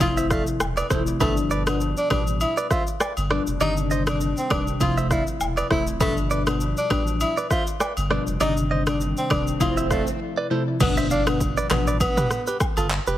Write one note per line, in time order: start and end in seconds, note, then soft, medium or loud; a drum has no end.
0.00 0.43 F1 loud
0.00 0.84 C3 loud
0.00 0.84 F3 medium
0.00 0.84 A3 medium
0.00 0.84 E4 loud
0.00 0.15 F4 medium
0.00 kick medium
0.00 high agogo medium
0.00 shaker medium
0.17 0.27 C5 medium
0.17 0.26 E5 medium
0.17 shaker medium
0.30 0.45 A3 medium
0.30 0.42 D5 medium
0.30 0.42 F5 medium
0.30 kick medium
0.30 cross-stick medium
0.30 shaker soft
0.47 shaker medium
0.60 0.82 E1 medium
0.60 cross-stick loud
0.60 low woodblock medium
0.60 shaker medium
0.77 0.87 B4 medium
0.77 0.86 D5 medium
0.77 high agogo medium
0.77 shaker soft
0.90 1.12 D1 loud
0.90 1.18 C3 medium
0.90 1.18 F3 medium
0.90 1.18 A3 medium
0.90 1.18 E4 medium
0.90 1.02 A4 medium
0.90 1.02 C5 medium
0.90 kick medium
0.90 cross-stick medium
0.90 shaker medium
1.07 shaker medium
1.20 1.93 G1 loud
1.20 1.63 B2 medium
1.20 1.63 F3 medium
1.20 1.63 G3 medium
1.20 1.35 A3 medium
1.20 1.63 D4 loud
1.20 1.32 G4 medium
1.20 1.32 B4 medium
1.20 kick loud
1.20 high agogo medium
1.20 shaker medium
1.37 shaker soft
1.51 1.62 B4 medium
1.51 1.62 D5 medium
1.51 shaker medium
1.67 1.85 B2 medium
1.67 1.85 F3 medium
1.67 1.85 G3 medium
1.67 1.79 B3 medium
1.67 1.85 D4 medium
1.67 cross-stick loud
1.67 high agogo medium
1.67 shaker soft
1.81 shaker medium
1.97 2.09 D4 medium
1.97 shaker medium
2.10 2.44 A1 medium
2.10 2.31 B2 medium
2.10 2.31 F3 medium
2.10 2.31 G3 medium
2.10 2.31 D4 medium
2.10 2.25 D4 medium
2.10 2.22 G4 medium
2.10 2.22 B4 medium
2.10 kick medium
2.10 cross-stick loud
2.10 high agogo medium
2.27 shaker medium
2.41 2.55 E4 medium
2.41 high agogo medium
2.41 shaker medium
2.57 2.67 B4 medium
2.57 2.66 D5 medium
2.57 shaker medium
2.71 2.85 F4 medium
2.71 2.82 C5 medium
2.71 2.82 E5 medium
2.71 kick medium
2.71 cross-stick medium
2.71 shaker medium
2.87 shaker medium
3.00 3.12 B4 medium
3.00 3.12 D5 medium
3.00 cross-stick loud
3.00 low woodblock medium
3.00 shaker medium
3.17 3.39 G1 medium
3.17 high agogo medium
3.17 shaker soft
3.30 3.58 B2 medium
3.30 3.58 F3 medium
3.30 3.58 G3 medium
3.30 3.59 D4 medium
3.30 3.42 B4 medium
3.30 3.42 D5 medium
3.30 cross-stick loud
3.47 3.57 F1 medium
3.47 shaker medium
3.60 4.33 G1 loud
3.60 4.03 C3 medium
3.60 4.03 D#3 medium
3.60 4.03 G3 medium
3.60 4.03 D4 loud
3.60 3.75 D#4 loud
3.60 3.72 G4 medium
3.60 3.72 D5 loud
3.60 high agogo medium
3.60 shaker medium
3.77 shaker soft
3.91 4.03 C5 medium
3.91 4.02 D#5 medium
3.91 shaker medium
4.07 4.25 C3 medium
4.07 4.25 D#3 medium
4.07 4.25 G3 medium
4.07 4.25 D4 medium
4.07 4.19 D4 medium
4.07 cross-stick loud
4.07 high agogo medium
4.07 shaker soft
4.21 shaker medium
4.37 4.49 C4 medium
4.37 shaker medium
4.50 4.72 D#1 loud
4.50 4.71 C3 medium
4.50 4.71 D#3 medium
4.50 4.71 G3 medium
4.50 4.71 D4 medium
4.50 4.65 D4 medium
4.50 4.62 B4 medium
4.50 4.62 D5 medium
4.50 kick medium
4.50 cross-stick loud
4.50 high agogo medium
4.67 shaker medium
4.80 5.23 F1 loud
4.80 5.64 C3 loud
4.80 5.64 F3 medium
4.80 5.64 A3 medium
4.80 5.64 E4 loud
4.80 4.95 F4 medium
4.80 kick medium
4.80 high agogo medium
4.80 shaker medium
4.97 5.07 C5 medium
4.97 5.06 E5 medium
4.97 shaker medium
5.11 5.25 E4 medium
5.11 5.23 D5 medium
5.11 5.22 F5 medium
5.11 kick medium
5.11 cross-stick medium
5.11 shaker medium
5.27 shaker medium
5.41 5.62 E1 medium
5.41 low woodblock medium
5.41 shaker medium
5.57 5.67 B4 medium
5.57 5.66 D5 medium
5.57 high agogo medium
5.57 shaker medium
5.70 6.02 D1 medium
5.70 5.98 C3 medium
5.70 5.98 F3 medium
5.70 5.98 A3 medium
5.70 5.99 E4 medium
5.70 5.85 E4 medium
5.70 5.82 A4 medium
5.70 5.82 C5 medium
5.70 kick medium
5.70 cross-stick medium
5.87 shaker medium
6.00 6.73 G1 loud
6.00 6.43 B2 medium
6.00 6.43 F3 medium
6.00 6.43 G3 medium
6.00 6.15 A3 loud
6.00 6.43 D4 loud
6.00 6.12 G4 medium
6.00 6.12 B4 loud
6.00 kick loud
6.00 swell medium
6.00 high agogo medium
6.00 shaker medium
6.17 shaker soft
6.31 6.42 B4 medium
6.31 6.42 D5 medium
6.31 shaker medium
6.47 6.65 B2 medium
6.47 6.65 F3 medium
6.47 6.65 G3 medium
6.47 6.59 B3 medium
6.47 6.65 D4 medium
6.47 cross-stick loud
6.47 high agogo medium
6.47 shaker soft
6.61 shaker medium
6.77 6.89 D4 medium
6.77 shaker medium
6.90 7.24 A1 medium
6.90 7.11 B2 medium
6.90 7.11 F3 medium
6.90 7.11 G3 medium
6.90 7.11 D4 medium
6.90 7.05 D4 medium
6.90 7.02 G4 medium
6.90 7.02 B4 medium
6.90 kick medium
6.90 cross-stick medium
6.90 high agogo medium
7.07 shaker medium
7.21 7.35 E4 medium
7.21 high agogo medium
7.21 shaker medium
7.37 7.47 B4 medium
7.37 7.46 D5 medium
7.37 shaker medium
7.51 7.65 F4 medium
7.51 7.62 C5 medium
7.51 7.62 E5 medium
7.51 kick medium
7.51 cross-stick medium
7.51 shaker medium
7.67 shaker medium
7.80 7.92 B4 medium
7.80 7.92 D5 medium
7.80 cross-stick medium
7.80 low woodblock medium
7.80 shaker medium
7.97 8.18 G1 medium
7.97 high agogo medium
7.97 shaker soft
8.10 8.38 B2 medium
8.10 8.38 F3 medium
8.10 8.38 G3 medium
8.10 8.38 D4 medium
8.10 8.22 B4 medium
8.10 8.22 D5 medium
8.10 cross-stick medium
8.27 8.37 F1 medium
8.27 shaker medium
8.40 9.13 G1 loud
8.40 8.83 C3 medium
8.40 8.83 D#3 medium
8.40 8.83 G3 medium
8.40 8.83 D4 loud
8.40 8.55 D#4 loud
8.40 8.52 G4 medium
8.40 8.52 D5 loud
8.40 high agogo medium
8.40 shaker medium
8.57 shaker soft
8.71 8.82 C5 medium
8.71 8.82 D#5 medium
8.87 9.05 C3 medium
8.87 9.05 D#3 medium
8.87 9.05 G3 medium
8.87 9.05 D4 medium
8.87 8.99 D4 medium
8.87 cross-stick loud
8.87 high agogo medium
8.87 shaker soft
9.01 shaker medium
9.17 9.29 C4 medium
9.17 shaker medium
9.30 9.52 D#1 medium
9.30 9.51 C3 medium
9.30 9.51 D#3 medium
9.30 9.51 G3 medium
9.30 9.51 D4 medium
9.30 9.45 D4 medium
9.30 9.42 B4 medium
9.30 9.42 D5 medium
9.30 kick medium
9.30 cross-stick loud
9.30 high agogo medium
9.47 shaker medium
9.60 10.03 F1 loud
9.60 10.44 C3 loud
9.60 10.44 F3 medium
9.60 10.44 A3 medium
9.60 10.44 E4 loud
9.60 9.75 F4 medium
9.60 kick medium
9.60 high agogo medium
9.60 shaker medium
9.77 9.87 C5 medium
9.77 9.86 E5 medium
9.77 shaker medium
9.91 10.05 A3 medium
9.91 10.02 D5 medium
9.91 10.02 F5 medium
9.91 kick medium
9.91 cross-stick medium
9.91 shaker soft
10.07 shaker medium
10.37 10.47 B4 medium
10.37 10.46 D5 medium
10.50 10.78 C3 medium
10.50 10.78 F3 medium
10.50 10.78 A3 medium
10.50 10.79 E4 medium
10.50 10.62 A4 medium
10.50 10.62 C5 medium
10.80 11.53 G1 loud
10.80 11.23 B2 medium
10.80 11.23 F3 medium
10.80 11.23 G3 medium
10.80 10.95 B3 loud
10.80 11.23 D4 loud
10.80 kick loud
10.80 crash loud
10.80 impact medium
10.80 high agogo medium
10.80 shaker medium
10.97 11.07 C5 medium
10.97 11.06 E5 medium
10.97 shaker soft
11.11 11.25 D4 medium
11.11 11.23 D5 medium
11.11 11.22 F5 medium
11.11 shaker medium
11.27 11.45 B2 medium
11.27 11.45 F3 medium
11.27 11.45 G3 medium
11.27 11.39 B3 medium
11.27 11.45 D4 medium
11.27 cross-stick loud
11.27 high agogo medium
11.27 shaker soft
11.41 kick loud
11.41 shaker medium
11.57 11.67 B4 medium
11.57 11.66 D5 medium
11.57 shaker medium
11.70 12.04 A1 medium
11.70 11.91 B2 medium
11.70 11.91 F3 medium
11.70 11.91 G3 medium
11.70 11.85 B3 medium
11.70 11.91 D4 medium
11.70 cross-stick loud
11.70 clap loud
11.70 mid tom medium
11.70 high agogo medium
11.70 shaker medium
11.87 11.97 B4 medium
11.87 11.96 D5 medium
11.87 shaker medium
12.00 12.45 B3 medium
12.00 kick loud
12.00 high agogo medium
12.00 shaker medium
12.17 12.27 G4 medium
12.17 12.26 B4 medium
12.17 mid tom loud
12.17 shaker medium
12.31 cross-stick medium
12.31 shaker medium
12.47 12.57 G4 medium
12.47 12.56 B4 medium
12.47 shaker medium
12.60 kick loud
12.60 cross-stick loud
12.60 low woodblock medium
12.60 shaker medium
12.77 12.98 G1 medium
12.77 12.87 F4 medium
12.77 12.86 A4 medium
12.77 high agogo medium
12.77 shaker medium
12.90 clap loud
12.90 shaker medium
13.07 13.17 F1 medium
13.07 13.17 G4 medium
13.07 13.16 B4 medium
13.07 shaker medium